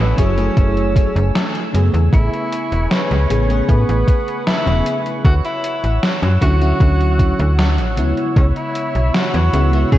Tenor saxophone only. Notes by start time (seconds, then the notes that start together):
0.00 B3
0.18 C#4
2.13 E4
2.91 C#4
3.69 B3
4.47 E4
5.25 F#4
5.45 E4
6.42 F#4
8.37 C#4
8.57 E4
9.15 F#4
9.92 G#4